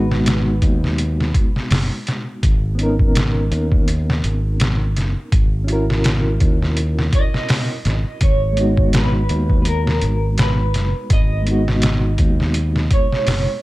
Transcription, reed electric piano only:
0.00 2.39 G#3 medium
0.00 2.41 B3 medium
0.00 2.42 D#4 medium
0.00 2.44 F#4 medium
2.75 5.28 B3 medium
2.75 5.29 C#4 medium
2.80 5.31 D#4 medium
2.80 5.32 A#4 medium
5.64 8.17 C#4 medium
5.64 8.19 E4 medium
5.70 8.20 F#4 medium
5.70 8.22 A#4 medium
8.53 11.40 G#3 medium
8.53 11.42 B3 medium
8.59 11.43 D#4 medium
8.59 11.45 F#4 medium
11.42 13.62 G#3 medium
11.42 13.62 B3 medium
11.48 13.62 D#4 medium
11.48 13.62 F#4 medium

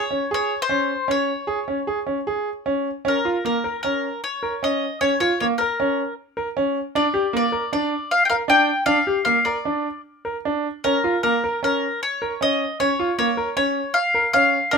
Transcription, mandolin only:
0.00 0.30 C#5 medium
0.34 0.62 C#5 medium
0.62 1.11 C5 loud
1.11 2.64 C#5 medium
3.08 3.44 A#4 medium
3.46 3.82 A#4 medium
3.83 4.20 A#4 medium
4.24 4.63 C#5 medium
4.64 5.01 D#5 medium
5.01 5.19 C#5 medium
5.20 5.39 C#5 medium
5.40 5.46 C#5 medium
5.58 6.13 A#4 medium
6.96 7.35 D5 medium
7.37 7.72 D5 medium
7.73 8.12 D5 medium
8.11 8.25 F5 medium
8.25 8.29 G5 medium
8.30 8.35 F5 medium
8.50 8.85 G5 loud
8.86 9.24 F5 loud
9.25 9.44 F5 medium
9.45 10.01 D5 medium
10.84 11.22 A#4 medium
11.23 11.60 A#4 medium
11.64 12.02 A#4 medium
12.03 12.42 C#5 medium
12.42 12.80 D#5 medium
12.80 13.17 C#5 medium
13.19 13.56 C#5 medium
13.57 13.98 C#5 medium
13.94 14.32 F5 loud
14.33 14.75 F5 loud
14.71 14.78 A#4 medium

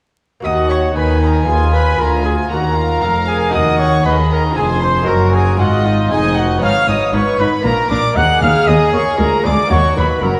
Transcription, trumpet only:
0.44 0.71 D#5 medium
0.69 0.95 C#5 medium
0.97 1.21 B4 medium
1.22 1.50 A#4 medium
1.48 1.75 G#4 medium
1.73 2.01 B4 medium
1.99 2.24 A#4 medium
2.24 2.36 G#4 medium
2.51 2.78 F#4 medium
2.76 3.02 F4 medium
3.02 3.14 A#4 medium
3.28 3.53 G#4 medium
3.54 3.81 D#5 medium
3.80 4.05 C#5 medium
4.06 4.17 B4 medium
4.32 4.43 A#4 medium
4.58 4.69 G#4 medium
4.83 5.10 C5 medium
5.08 5.36 A#4 medium
5.35 5.59 G#4 medium
5.60 5.88 F#4 medium
5.86 6.13 D#4 medium
6.12 6.37 G#4 medium
6.38 6.62 F#4 medium
6.63 6.88 F5 loud
6.89 7.13 D#5 medium
7.13 7.38 C#5 medium
7.39 7.51 B4 medium
7.64 7.89 A#4 medium
7.91 8.18 D5 loud
8.17 8.41 F#5 loud
8.42 8.69 F5 loud
8.68 8.92 D#5 medium
8.93 9.18 C#5 medium
9.19 9.46 A#4 medium
9.44 9.72 D5 medium
9.70 9.96 C#5 loud
9.96 10.24 B4 medium
10.22 10.40 A#4 medium

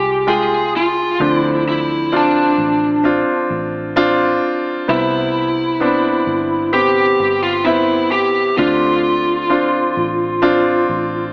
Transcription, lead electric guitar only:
0.00 0.31 G4 medium
0.29 0.71 G#4 loud
0.76 1.35 F4 medium
1.35 1.63 E4 medium
1.69 2.15 E4 medium
2.16 3.02 D4 medium
4.90 6.73 E4 medium
6.74 7.43 G4 loud
7.43 7.65 F4 medium
7.65 8.11 E4 medium
8.11 8.57 G4 medium
8.58 11.31 F4 medium

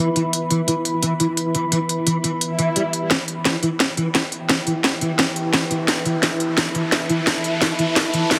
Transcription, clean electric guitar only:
0.16 0.21 E3 medium
0.51 0.60 E3 medium
0.68 0.73 E3 medium
1.03 1.12 E3 medium
1.20 1.25 E3 medium
1.55 1.64 E3 medium
1.72 1.77 E3 medium
2.07 2.16 E3 medium
2.24 2.29 E3 medium
2.59 2.68 E3 loud
2.76 2.82 G3 medium
3.11 3.16 E3 medium
3.45 3.55 E3 medium
3.63 3.68 E3 medium
3.97 4.07 E3 medium
4.15 4.20 E3 medium
4.49 4.59 E3 medium
4.67 4.72 E3 medium
5.01 5.11 E3 medium
5.19 5.24 E3 medium
5.53 5.63 E3 medium
5.71 5.76 E3 medium
6.05 6.15 E3 medium
6.23 6.28 E3 medium
6.57 6.67 E3 medium
6.75 6.80 E3 medium
7.09 7.19 E3 medium
7.27 7.32 E3 medium
7.61 7.71 E3 medium
7.79 7.84 E3 medium
8.13 8.23 E3 medium
8.31 8.36 E3 medium

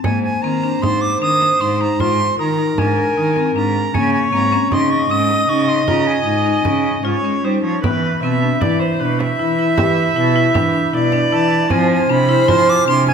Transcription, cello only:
0.04 0.39 G#2 medium
0.43 0.78 D#3 medium
0.83 1.17 G#2 medium
1.21 1.56 D#3 medium
1.61 1.95 G#2 medium
2.00 2.34 G#2 medium
2.39 2.74 D#3 medium
2.78 3.12 G#2 medium
3.17 3.51 D#3 medium
3.56 3.90 G#2 medium
3.95 4.28 C#3 medium
4.34 4.67 G#2 medium
4.72 5.06 C#3 medium
5.10 5.44 G#2 medium
5.49 5.83 C#3 medium
5.87 6.22 C#3 medium
6.26 6.60 G#2 medium
6.65 7.00 C#3 medium
7.04 7.22 G#2 medium
7.24 7.42 G#3 medium
7.44 7.62 G3 medium
7.64 7.81 F3 medium
7.84 8.18 E3 medium
8.23 8.57 B2 medium
8.62 8.96 E3 medium
9.01 9.35 B2 medium
9.40 9.74 E3 medium
9.79 10.12 E3 medium
10.16 10.50 B2 medium
10.55 10.89 E3 medium
10.94 11.28 B2 medium
11.33 11.67 E3 medium
11.71 12.05 F3 loud
12.09 12.44 C3 medium
12.49 12.83 F3 medium
12.88 13.14 C3 medium

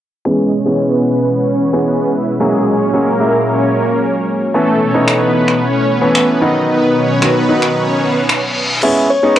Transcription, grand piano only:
0.25 0.49 E3 medium
0.25 0.49 G#3 medium
0.25 0.50 B3 medium
0.25 0.50 C#4 medium
0.65 1.29 E3 medium
0.65 1.29 G#3 medium
0.65 1.30 B3 medium
0.65 1.30 C#4 medium
1.73 2.13 E3 medium
1.73 2.13 G#3 medium
1.73 2.13 B3 medium
1.73 2.13 C#4 medium
2.40 2.72 F#3 medium
2.40 2.72 G#3 medium
2.40 2.72 A#3 medium
2.40 2.72 C#4 medium
2.94 3.10 F#3 medium
2.94 3.10 G#3 medium
2.94 3.10 A#3 medium
2.94 3.10 C#4 medium
3.20 3.84 F#3 medium
3.20 3.84 G#3 medium
3.20 3.84 A#3 medium
3.20 3.84 E4 medium
4.54 4.78 E3 medium
4.54 4.78 A3 medium
4.54 4.78 B3 medium
4.54 4.78 C#4 medium
4.94 5.58 E3 medium
4.94 5.58 A3 medium
4.94 5.58 B3 medium
4.94 5.58 D#4 medium
6.01 6.41 E3 medium
6.01 6.41 A3 medium
6.01 6.40 B3 medium
6.01 6.41 C#4 medium
6.41 7.06 D#3 medium
6.41 7.06 F#3 medium
6.41 7.06 B3 medium
6.41 7.06 D#4 medium
7.22 7.38 D#3 medium
7.22 7.38 F#3 medium
7.22 7.38 B3 medium
7.22 7.38 F#4 medium
7.49 8.12 D#3 medium
7.49 8.13 F#3 medium
7.49 8.13 B3 medium
7.49 8.13 D#4 medium
8.83 9.07 G#3 medium
8.83 9.07 B3 medium
8.83 9.07 C#4 medium
8.83 9.07 E4 medium
9.23 9.39 G#3 medium
9.23 9.39 B3 medium
9.23 9.39 C#4 medium
9.23 9.39 D#4 medium

